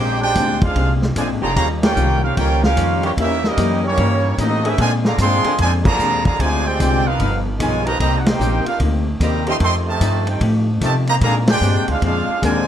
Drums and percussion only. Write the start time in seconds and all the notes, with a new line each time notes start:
0.35 kick, hi-hat pedal, ride
0.61 kick, ride
0.76 kick, ride
1.02 snare
1.16 kick, hi-hat pedal, ride
1.56 kick, ride
1.83 snare, ride
1.96 hi-hat pedal
2.37 kick, ride
2.63 snare
2.77 kick, hi-hat pedal, ride
3.03 ride
3.17 kick, ride
3.44 snare
3.57 kick, hi-hat pedal, ride
3.97 kick, ride
4.38 kick, hi-hat pedal, ride
4.65 ride
4.78 kick, ride
5.05 snare
5.18 kick, hi-hat pedal, ride
5.44 ride
5.58 kick, ride
5.85 kick, crash
5.99 hi-hat pedal
6.25 kick, ride
6.40 kick, ride
6.80 kick, hi-hat pedal, ride
7.20 kick, ride
7.60 kick, hi-hat pedal, ride
7.87 ride
8.00 kick, ride
8.26 snare, ride
8.40 hi-hat pedal
8.66 ride
8.80 kick, ride
9.20 kick, hi-hat pedal, ride
9.47 ride
9.60 kick, ride
10.01 kick, hi-hat pedal, ride
10.27 ride
10.41 kick, ride
10.81 kick, hi-hat pedal, ride
11.07 ride
11.21 kick, ride
11.47 snare, ride
11.62 hi-hat pedal
11.88 ride
12.02 kick, ride
12.42 kick, hi-hat pedal, ride